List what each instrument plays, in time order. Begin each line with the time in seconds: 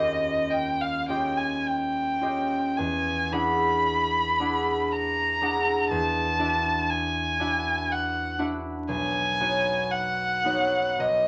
Already playing: harp D#2 C#4 F4 G4 D#5, violin D#5
0.50 violin G5
0.81 violin F5
1.08 harp C#4 F4 G4 D#5, violin G5
1.37 violin G#5
1.67 violin G5
2.21 harp C#4 F4 G4 D#5
2.77 harp E2, violin G#5
3.32 harp D4 E4 G#4 F#5, violin B5
4.40 harp D4 E4 G#4 F#5
4.92 violin A#5
5.41 harp D4 E4 G#4 F#5
5.90 harp E2, violin A5
6.39 harp D4 E4 F#4 E5
6.90 violin G#5
7.39 harp D4 E4 F#4 E5
7.92 violin F#5
8.39 harp D4 E4 F#4 E5
8.88 harp B1, violin G#5
9.40 harp B3 D#4 F#4 C#5
9.91 violin F#5
10.44 harp B3 D#4 F#4 C#5
10.99 harp B1, violin D#5